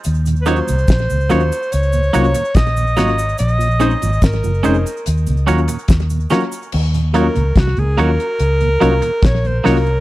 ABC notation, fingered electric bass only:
X:1
M:4/4
L:1/16
Q:1/4=72
K:Ebdor
V:1 name="Fingered electric bass" clef=bass
E,,3 C,, B,,, D,, E,, z D,,2 C,, z B,,,2 A,,,2 | B,,,3 A,,, A,,, G,,, F,,, z E,, D,, E,, z E,,2 z2 | E,,3 D,, C,, D,, E,, z D,,2 C,, z B,,,2 C,,2 |]